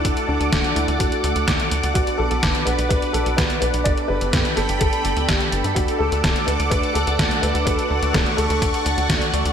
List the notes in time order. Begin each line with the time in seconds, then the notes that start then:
Already playing: E4 A4 D5 F#5 D6
0.05 D2 A3 D4 F#4 A4, kick, closed hi-hat
0.17 closed hi-hat
0.27 D2 D4
0.40 D2, closed hi-hat
0.52 D1, kick, snare, closed hi-hat
0.64 closed hi-hat
0.75 D2 E4, closed hi-hat
0.88 D2, closed hi-hat
0.99 D2 F#4, kick, closed hi-hat
1.12 closed hi-hat
1.24 D2, closed hi-hat
1.36 D2, closed hi-hat
1.48 D2 A3 D4 F#4 A4, kick, snare, closed hi-hat
1.60 closed hi-hat
1.71 D2, closed hi-hat
1.83 D2, closed hi-hat
1.94 B1 B3 D4 F#4 B4, kick, closed hi-hat
2.07 closed hi-hat
2.18 B1 A4
2.31 B1, closed hi-hat
2.43 F#1, kick, snare, closed hi-hat
2.55 closed hi-hat
2.65 B1 B4, closed hi-hat
2.78 B1, closed hi-hat
2.89 B1 B4, kick, closed hi-hat
3.02 closed hi-hat
3.13 B1 A4, closed hi-hat
3.26 B1, closed hi-hat
3.37 B1 B3 D4 F#4 B4, kick, snare, closed hi-hat
3.50 closed hi-hat
3.60 B1 B4, closed hi-hat
3.74 B1, closed hi-hat
3.84 G1 B3 D4 G4 A4 D5 G5 B5, kick, closed hi-hat
3.98 closed hi-hat
4.08 G1 B4
4.21 G1, closed hi-hat
4.33 G2, kick, snare, closed hi-hat
4.45 closed hi-hat
4.56 G1 A4, snare, closed hi-hat
4.69 G1, closed hi-hat
4.80 G1 A4, kick, closed hi-hat
4.93 closed hi-hat
5.05 G1, closed hi-hat
5.17 D2 B3 D4 G4 D5, closed hi-hat
5.27 G1 G4, kick, snare, closed hi-hat
5.40 closed hi-hat
5.52 G1 B3 D4 G4 B4, closed hi-hat
5.64 G2, closed hi-hat
5.75 D2 A3 D4 F#4 A4 D5 F#5 D6, kick, closed hi-hat
5.88 closed hi-hat
5.99 D2 A4
6.12 D2, closed hi-hat
6.24 D1, kick, snare, closed hi-hat
6.36 closed hi-hat
6.46 D2 B4, closed hi-hat
6.60 D2, closed hi-hat
6.70 D2 B4, kick, closed hi-hat
6.83 closed hi-hat
6.94 D2 A4, closed hi-hat
7.07 D2, closed hi-hat
7.19 D2 A3 D4 F#4 A4, kick, snare, closed hi-hat
7.31 closed hi-hat
7.42 D2 B4, closed hi-hat
7.55 D2, closed hi-hat
7.65 D2 A3 D4 F#4 A4 B4 C#6, kick, closed hi-hat
7.79 closed hi-hat
7.90 D2
8.02 D2, closed hi-hat
8.13 D1 A4, kick, snare, closed hi-hat
8.26 closed hi-hat
8.37 D2 A4, closed hi-hat
8.50 D2, closed hi-hat
8.62 D2, kick, closed hi-hat
8.74 closed hi-hat
8.86 D2, closed hi-hat
8.98 D2, closed hi-hat
9.10 D2 A3 D4 F#4 A4, kick, snare, closed hi-hat
9.22 closed hi-hat
9.33 D2, closed hi-hat
9.45 D2, closed hi-hat